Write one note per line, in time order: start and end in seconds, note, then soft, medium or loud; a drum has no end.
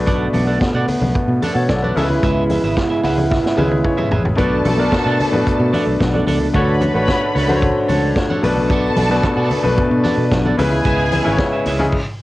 0.00 0.26 B1 loud
0.00 0.67 B2 medium
0.00 1.93 D3 medium
0.00 0.67 A3 medium
0.00 1.94 A3 medium
0.00 1.94 B3 medium
0.00 0.67 D4 medium
0.00 0.67 B4 medium
0.06 0.27 A4 medium
0.06 0.27 D5 medium
0.06 0.27 F#5 medium
0.06 kick loud
0.06 closed hi-hat medium
0.06 muted conga soft
0.33 0.57 B1 medium
0.33 0.46 A4 medium
0.33 0.46 D5 medium
0.33 0.46 F#5 medium
0.33 open hi-hat medium
0.33 high conga medium
0.47 0.59 A4 medium
0.47 0.60 D5 medium
0.47 0.60 F#5 medium
0.61 muted clean electric guitar stroke soft
0.61 kick loud
0.61 snare loud
0.61 closed hi-hat medium
0.61 muted conga soft
0.74 0.86 B2 medium
0.74 0.87 A4 medium
0.74 0.87 D5 medium
0.74 0.88 F#5 medium
0.88 muted clean electric guitar stroke soft
0.88 open hi-hat medium
0.88 muted conga soft
0.88 low conga medium
1.01 1.13 B1 medium
1.01 muted clean electric guitar stroke soft
1.01 high conga medium
1.01 low conga medium
1.15 muted fingered electric bass stroke soft
1.15 muted clean electric guitar stroke soft
1.15 kick loud
1.15 closed hi-hat medium
1.28 1.40 B2 medium
1.28 muted clean electric guitar stroke soft
1.42 1.62 A4 loud
1.42 1.55 D5 medium
1.42 1.55 F#5 loud
1.42 open hi-hat medium
1.42 high conga medium
1.55 1.67 B2 medium
1.55 1.68 C#5 medium
1.55 1.68 F#5 medium
1.55 muted clean electric guitar stroke soft
1.69 1.92 B1 medium
1.69 1.82 A4 soft
1.69 1.82 D5 medium
1.69 muted clean electric guitar stroke soft
1.69 kick medium
1.69 snare loud
1.69 closed hi-hat medium
1.69 muted conga soft
1.82 2.08 F#4 soft
1.82 1.96 A4 soft
1.82 2.01 B4 medium
1.82 1.97 D5 medium
1.82 1.98 F#5 medium
1.82 high conga medium
1.95 2.19 C#2 medium
1.95 2.83 C#3 medium
1.95 4.22 C#3 medium
1.95 2.83 G#3 medium
1.95 4.22 G#3 medium
1.95 4.22 B3 medium
1.95 2.83 E4 medium
1.95 4.22 E4 medium
1.95 2.16 G#4 medium
1.95 2.03 A4 medium
1.95 2.10 B4 medium
1.95 2.10 E5 medium
1.95 open hi-hat medium
1.95 muted conga soft
1.95 high conga medium
2.03 2.86 B4 medium
2.09 muted clean electric guitar stroke medium
2.09 low conga medium
2.23 2.57 C#2 medium
2.23 2.43 G#4 medium
2.23 2.43 B4 medium
2.23 2.44 E5 medium
2.23 kick loud
2.23 closed hi-hat medium
2.23 muted conga soft
2.50 2.63 G#4 medium
2.50 2.64 B4 medium
2.50 2.63 E5 medium
2.50 open hi-hat medium
2.50 high conga medium
2.63 2.75 G#1 medium
2.63 2.77 G#4 soft
2.63 2.77 B4 medium
2.63 2.77 E5 medium
2.77 muted clean electric guitar stroke soft
2.77 kick loud
2.77 snare loud
2.77 closed hi-hat medium
2.77 muted conga soft
2.90 3.02 G#4 soft
2.90 3.03 B4 soft
2.90 3.03 E5 medium
3.03 3.38 C#2 medium
3.03 3.24 G#4 medium
3.03 3.17 B4 medium
3.03 3.17 E5 medium
3.03 3.29 F#5 medium
3.03 open hi-hat medium
3.03 muted conga soft
3.03 low conga medium
3.18 muted clean electric guitar stroke soft
3.18 high conga medium
3.18 low conga medium
3.31 3.81 E5 medium
3.31 muted clean electric guitar stroke soft
3.31 kick loud
3.31 snare medium
3.31 muted conga soft
3.44 muted clean electric guitar stroke soft
3.44 snare medium
3.57 3.80 C#2 medium
3.57 4.22 C#3 medium
3.57 4.23 G#3 medium
3.57 4.23 E4 medium
3.57 3.78 G#4 medium
3.57 3.71 B4 medium
3.57 4.23 B4 medium
3.57 3.70 E5 medium
3.57 high tom medium
3.57 muted conga soft
3.57 high conga medium
3.71 muted clean electric guitar stroke soft
3.71 high tom medium
3.84 4.35 C#5 medium
3.84 muted clean electric guitar stroke soft
3.84 kick medium
3.84 mid tom medium
3.97 4.10 G#4 medium
3.97 4.10 B4 medium
3.97 4.11 E5 medium
3.97 mid tom medium
3.97 high conga medium
4.11 4.34 A1 medium
4.11 4.27 G#4 medium
4.11 4.25 B4 medium
4.11 4.24 E5 medium
4.11 floor tom loud
4.11 high conga medium
4.25 muted clean electric guitar stroke soft
4.25 floor tom medium
4.25 low conga medium
4.36 4.61 B1 medium
4.36 4.70 B2 medium
4.36 4.70 A3 medium
4.36 10.55 A3 medium
4.36 6.52 B3 medium
4.36 4.71 D4 medium
4.36 10.55 D4 medium
4.36 4.58 A4 medium
4.36 6.24 A4 loud
4.36 4.71 B4 medium
4.36 4.58 D5 medium
4.36 4.59 F#5 medium
4.36 6.24 A5 loud
4.36 kick loud
4.36 closed hi-hat medium
4.36 muted conga soft
4.65 4.88 B1 medium
4.65 4.80 A4 medium
4.65 4.79 D5 medium
4.65 4.79 F#5 medium
4.65 open hi-hat medium
4.65 muted conga soft
4.65 high conga medium
4.78 5.22 B2 medium
4.78 5.22 A3 medium
4.78 5.22 D4 medium
4.78 4.92 A4 medium
4.78 4.86 A#4 medium
4.78 4.93 D5 medium
4.78 4.93 F#5 medium
4.85 5.26 B4 medium
4.92 muted clean electric guitar stroke soft
4.92 kick medium
4.92 snare loud
4.92 closed hi-hat medium
4.92 muted conga soft
5.06 5.17 B2 medium
5.06 5.18 A4 medium
5.06 5.19 D5 medium
5.06 5.19 F#5 medium
5.20 muted clean electric guitar stroke soft
5.20 open hi-hat medium
5.20 muted conga soft
5.20 low conga medium
5.32 5.44 A2 medium
5.32 6.19 B2 medium
5.32 6.19 A3 medium
5.32 6.20 D4 medium
5.32 6.20 B4 medium
5.32 muted clean electric guitar stroke medium
5.32 high conga medium
5.46 muted clean electric guitar stroke soft
5.46 kick loud
5.46 closed hi-hat medium
5.46 muted conga soft
5.60 5.71 B2 medium
5.60 muted clean electric guitar stroke soft
5.73 5.93 A4 medium
5.73 5.87 D5 medium
5.73 5.86 F#5 medium
5.73 open hi-hat medium
5.73 muted conga soft
5.73 high conga medium
5.87 5.98 B1 medium
5.87 muted clean electric guitar stroke soft
5.99 6.23 B1 medium
5.99 muted clean electric guitar stroke soft
5.99 kick medium
5.99 snare loud
5.99 closed hi-hat medium
5.99 muted conga soft
6.14 6.25 A4 soft
6.14 6.26 D5 medium
6.14 6.27 F#5 medium
6.14 high conga medium
6.27 6.50 C#2 medium
6.27 6.47 A4 medium
6.27 6.40 D5 medium
6.27 6.40 F#5 medium
6.27 open hi-hat medium
6.27 muted conga soft
6.27 high conga medium
6.41 muted clean electric guitar stroke medium
6.41 low conga medium
6.54 6.88 D2 medium
6.54 6.87 D3 medium
6.54 6.87 A3 medium
6.54 8.42 C#4 medium
6.54 6.87 F#4 medium
6.54 8.42 F#4 medium
6.54 6.74 A4 medium
6.54 8.13 B4 loud
6.54 6.75 C#5 medium
6.54 6.87 C#5 medium
6.54 6.75 F#5 medium
6.54 8.13 B5 loud
6.54 kick loud
6.54 closed hi-hat medium
6.54 muted conga soft
6.81 6.95 A4 soft
6.81 6.94 C#5 medium
6.81 6.93 F#5 medium
6.81 open hi-hat medium
6.81 muted conga soft
6.81 high conga medium
6.94 7.06 A1 medium
6.94 7.38 D3 medium
6.94 7.38 A3 medium
6.94 7.38 F#4 medium
6.94 7.06 A4 soft
6.94 7.02 B4 medium
6.94 7.06 C#5 medium
6.94 7.07 F#5 medium
7.02 7.42 C#5 medium
7.07 muted clean electric guitar stroke soft
7.07 kick loud
7.07 snare loud
7.07 closed hi-hat medium
7.07 muted conga soft
7.20 7.33 A4 medium
7.20 7.34 C#5 medium
7.20 7.34 F#5 medium
7.34 7.70 C#2 medium
7.34 7.55 A4 medium
7.34 7.48 C#5 medium
7.34 7.47 F#5 medium
7.34 open hi-hat medium
7.34 muted conga soft
7.34 low conga medium
7.48 8.35 D3 medium
7.48 8.35 A3 medium
7.48 8.36 F#4 medium
7.48 7.56 C5 medium
7.48 muted clean electric guitar stroke medium
7.48 high conga medium
7.56 8.39 C#5 loud
7.62 muted clean electric guitar stroke soft
7.62 kick loud
7.62 closed hi-hat medium
7.76 muted clean electric guitar stroke soft
7.88 8.12 C#2 medium
7.88 8.09 A4 medium
7.88 8.03 C#5 medium
7.88 8.03 F#5 medium
7.88 open hi-hat medium
7.88 muted conga soft
7.88 high conga medium
8.04 muted clean electric guitar stroke soft
8.16 muted clean electric guitar stroke soft
8.16 kick medium
8.16 snare medium
8.16 closed hi-hat medium
8.16 muted conga soft
8.30 8.43 A4 medium
8.30 8.45 C#5 medium
8.30 8.44 F#5 medium
8.30 high conga medium
8.42 8.88 B1 medium
8.42 8.97 B2 medium
8.42 8.97 A3 medium
8.42 11.90 B3 medium
8.42 8.98 D4 medium
8.42 8.59 A4 medium
8.42 10.28 A4 loud
8.42 8.98 B4 loud
8.42 8.57 D5 medium
8.42 8.56 F#5 medium
8.42 10.28 A5 loud
8.42 open hi-hat medium
8.42 high conga medium
8.57 muted clean electric guitar stroke medium
8.57 low conga medium
8.70 8.90 A4 medium
8.70 8.91 D5 medium
8.70 8.91 F#5 loud
8.70 kick loud
8.70 closed hi-hat medium
8.70 muted conga soft
8.96 9.19 B1 loud
8.96 9.11 A4 medium
8.96 9.10 D5 medium
8.96 9.10 F#5 medium
8.96 open hi-hat medium
8.96 high conga medium
9.10 9.53 B2 medium
9.10 9.54 A3 medium
9.10 9.54 D4 medium
9.10 9.23 A4 medium
9.10 9.54 B4 medium
9.10 9.23 D5 medium
9.10 9.24 F#5 medium
9.23 kick loud
9.23 snare loud
9.23 closed hi-hat medium
9.23 muted conga soft
9.37 9.49 B2 medium
9.37 9.49 A4 medium
9.37 9.50 D5 medium
9.37 9.51 F#5 medium
9.50 muted clean electric guitar stroke soft
9.50 open hi-hat medium
9.50 muted conga soft
9.50 low conga medium
9.63 9.75 B1 medium
9.63 10.50 B2 medium
9.63 10.50 A3 medium
9.63 10.51 D4 medium
9.63 10.51 B4 loud
9.63 muted clean electric guitar stroke soft
9.63 high conga medium
9.78 muted fingered electric bass stroke medium
9.78 muted clean electric guitar stroke soft
9.78 kick loud
9.78 closed hi-hat medium
9.78 muted conga soft
9.91 10.02 B2 medium
9.91 muted clean electric guitar stroke soft
10.04 10.24 A4 medium
10.04 10.17 D5 loud
10.04 10.16 F#5 loud
10.04 open hi-hat medium
10.04 muted conga soft
10.04 high conga medium
10.17 10.29 B2 medium
10.17 muted clean electric guitar stroke soft
10.31 10.54 B1 loud
10.31 muted clean electric guitar stroke soft
10.31 kick medium
10.31 snare medium
10.31 closed hi-hat medium
10.46 10.58 A4 medium
10.46 10.59 D5 medium
10.46 10.59 F#5 medium
10.46 high conga medium
10.57 10.81 C#2 medium
10.57 11.12 C#3 medium
10.57 11.92 C#3 medium
10.57 11.12 G#3 medium
10.57 11.92 G#3 medium
10.57 11.13 E4 medium
10.57 11.92 E4 medium
10.57 10.79 G#4 medium
10.57 11.64 G#4 loud
10.57 10.72 B4 medium
10.57 11.13 B4 medium
10.57 10.71 E5 medium
10.57 11.65 G#5 loud
10.57 open hi-hat medium
10.57 muted conga soft
10.57 high conga medium
10.72 muted clean electric guitar stroke soft
10.72 low conga medium
10.84 11.19 C#2 loud
10.84 11.05 G#4 medium
10.84 11.06 B4 medium
10.84 11.06 E5 loud
10.84 kick loud
10.84 closed hi-hat medium
10.84 muted conga soft
11.11 11.25 G#4 medium
11.11 11.24 B4 soft
11.11 11.24 E5 medium
11.11 open hi-hat medium
11.11 high conga medium
11.24 11.37 G#1 medium
11.24 11.68 C#3 medium
11.24 11.68 G#3 medium
11.24 11.69 E4 medium
11.24 11.38 G#4 medium
11.24 11.38 B4 medium
11.24 11.32 B4 medium
11.24 11.38 E5 medium
11.32 11.72 C#5 medium
11.38 muted clean electric guitar stroke soft
11.38 kick loud
11.38 snare loud
11.38 closed hi-hat medium
11.38 muted conga soft
11.53 11.65 G#4 medium
11.53 11.66 B4 medium
11.53 11.66 E5 medium
11.65 11.89 C#2 loud
11.65 11.86 G#4 medium
11.65 11.80 B4 medium
11.65 11.79 E5 medium
11.65 open hi-hat medium
11.65 low conga medium
11.79 11.93 C#3 medium
11.79 11.93 G#3 medium
11.79 11.93 E4 medium
11.79 11.93 G#4 loud
11.79 muted clean electric guitar stroke soft
11.79 high conga medium
11.79 low conga medium
11.92 kick loud
11.92 crash medium